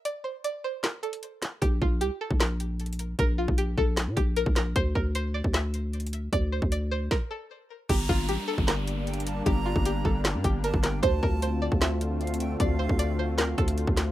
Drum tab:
CC |------------------------------------------------|------------------------------------------------|------------------------------------------------|------------------------------------------------|
HH |x-----------x-----------x-----x--x--x-----x-----|x-----------x-----------x-----x-----x-x-x-x-----|x-----------x-----------x-----x-----x-----x-----|x-----------x-----------x-----x-----x-x-x-x-----|
CP |------------------------x-----------------x-----|------------------------x-----------------------|------------------------x-----------------x-----|------------------------x-----------------------|
SD |------------------------o-----------------o-----|------------------------o-----------------------|------------------------o-----------------o-----|------------------------o-----------------------|
BD |------------------------------------------------|o-----o--------------o--------------------------|o--------o--------o-----------o--------o--------|o-----o--------------o--------------------------|

CC |------------------------------------------------|x-----------------------------------------------|------------------------------------------------|------------------------------------------------|
HH |x-----------x-----------------------------------|x-----------x-----------x-----x-----x-x-x-x-----|x-----------x-----------x-----x-----x-----x-----|x-----------x-----------x-----x-----x-x-x-x-----|
CP |------------------------------------------------|------------------------x-----------------------|------------------------x-----------------x-----|------------------------x-----------------------|
SD |------------------------o-----------------------|------------------------o-----------------------|------------------------o-----------------o-----|------------------------o-----------------------|
BD |o--------o--------------o-----------------------|o-----o--------------o--------------------------|o--------o--------o-----------o--------o--------|o-----o--------------o--------------------------|

CC |------------------------------------------------|
HH |x-----------x-----------x-----x--x--x-----x-----|
CP |------------------------x-----------------x-----|
SD |------------------------o-----------------o-----|
BD |o--------o--------------------o--------o--------|